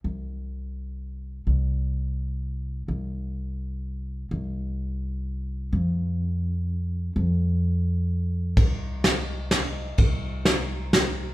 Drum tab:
RD |------|------|------|------|
SD |------|------|------|------|
BD |------|------|------|------|

RD |------|------|x-x-x-|x-x-x-|
SD |------|------|--o-o-|--o-o-|
BD |------|------|o-----|o-----|